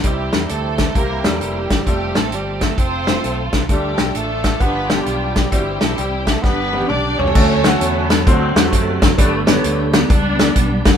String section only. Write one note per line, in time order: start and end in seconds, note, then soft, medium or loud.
0.04 0.50 C4 medium
0.04 0.50 E4 medium
0.04 0.46 G4 medium
0.50 0.93 C4 medium
0.50 0.93 E4 medium
0.50 0.96 A4 medium
0.95 1.24 E4 medium
0.95 1.23 G4 medium
0.95 1.24 A#4 medium
1.25 1.83 A#3 medium
1.25 1.83 E4 medium
1.25 1.85 G4 medium
1.86 2.74 C4 medium
1.86 2.14 G4 medium
2.15 2.32 A4 medium
2.33 2.62 G4 medium
2.62 2.78 A4 medium
2.78 3.66 F4 medium
2.78 3.66 A4 medium
2.78 3.49 C5 medium
3.70 4.14 D4 medium
3.70 4.12 G4 medium
4.15 4.58 D4 medium
4.15 4.57 F4 medium
4.15 4.61 A4 medium
4.62 4.89 D4 medium
4.62 5.49 F4 medium
4.62 4.91 B4 medium
4.90 5.48 B3 medium
4.90 5.48 D4 medium
4.90 5.51 G4 medium
5.52 6.40 C4 medium
5.52 6.40 E4 medium
5.52 5.80 G4 medium
5.82 5.98 A4 medium
5.98 6.27 G4 medium
6.28 6.44 A4 medium
6.44 7.32 D4 medium
6.44 7.32 G4 medium
6.44 6.87 B4 medium
6.91 7.19 D5 medium
7.19 8.23 F#4 medium
7.19 8.23 A4 medium
7.19 8.27 C#5 medium
7.36 7.81 D3 medium
7.36 7.81 F#3 medium
7.36 7.78 A3 medium
7.82 8.24 D3 medium
7.82 8.24 F#3 medium
7.82 8.28 B3 medium
8.28 8.56 F#3 medium
8.28 8.55 A3 medium
8.28 8.57 C4 loud
8.57 9.15 C3 medium
8.57 9.15 F#3 medium
8.57 9.15 A3 loud
9.19 10.07 D3 medium
9.19 9.46 A3 loud
9.48 9.63 B3 medium
9.65 9.94 A3 loud
9.92 10.08 B3 medium
10.09 10.97 G3 medium
10.09 10.97 B3 medium
10.09 10.85 D4 loud